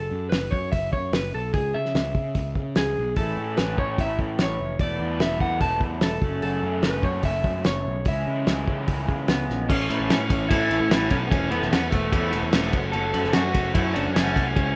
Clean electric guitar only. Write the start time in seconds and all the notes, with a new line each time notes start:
Already playing: A4
0.29 B4
0.51 C#5
0.72 E5
0.93 C#5
1.15 B4
1.34 A4
1.54 G#4
1.74 E5
2.77 G#4
3.17 A4
3.57 B4
3.79 C#5
4.01 E5
4.42 C#5
4.81 D5
5.21 E5
5.41 F#5
5.61 A5
6.03 A4
6.43 A4
6.83 B4
7.04 C#5
7.25 E5
7.66 C#5
8.08 E5
9.29 B3
9.69 C#4
10.49 E4
11.11 C#4
11.27 B3 C#4
11.51 B3
11.71 B3
11.91 A3
12.92 A4
13.33 F#4
13.74 E4
13.94 D4
14.14 C#4
14.55 C#4